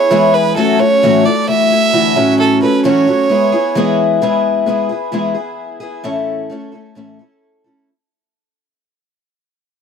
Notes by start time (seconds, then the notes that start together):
Already playing: B3 E4 G#4 C#5
0.11 E3 G#3 B3 E4 G#4
0.34 B4
0.56 A2 E3 F#3 A3 C#4 F#4 A4
0.79 F#3 A3 C#4 F#4 C#5
1.03 A2 E3 F#3 A3 C#4 F#4
1.24 A3 E4 F#4 D5
1.47 E3 A3 E4 F#4 E5
1.70 A3 E4 F#4
1.92 D3 E3 A3 E4 F#4
2.15 A2 E3 F#3 A3 C#4 F#4
2.39 A4
2.61 F#3 A3 C#4 F#4 B4
2.84 A2 E3 F#3 A3 C#4 F#4 C#5
3.07 F#3 A3 C#4 F#4
3.29 G#3 B3 E4 G#4
3.52 B3 E4 G#4
3.75 E3 G#3 B3 E4 G#4
4.22 E3 G#3 B3 E4 G#4
4.66 G#3 B3 E4 G#4
4.89 B3 E4 G#4
5.12 E3 G#3 B3 E4 G#4
5.35 B3 E4 G#4
5.80 B3 E4 G#4
6.04 A2 E3 A3 C#4 E4 A4
6.50 A3 C#4 E4 A4
6.72 A3 C#4 E4 A4
6.95 A2 E3 A3 C#4 E4 A4
7.19 A3 C#4 E4 A4
7.64 A3 C#4 E4 A4